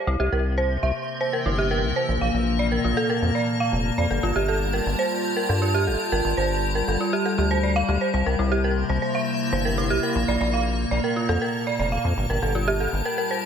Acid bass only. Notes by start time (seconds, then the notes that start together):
0.07 C2
0.20 C2
0.32 C2
0.83 C2
1.46 G1
1.84 C2
2.09 A#1
2.21 A#1
2.34 A#1
2.84 A#1
3.22 F2
3.73 F1
3.98 F2
4.11 G1
4.23 G1
4.36 G1
4.86 G1
5.49 G2
5.87 G1
6.12 G1
6.25 G1
6.37 G1
6.88 G1
7.38 D2
7.89 D2
8.14 C2
8.26 C2
8.39 C2
8.90 C2
9.52 G1
9.90 C2
10.15 A#1
10.28 A#1
10.41 A#1
10.91 A#1
11.29 F2
11.79 F1
12.05 F2
12.17 G1
12.30 G1
12.42 G1
12.93 G1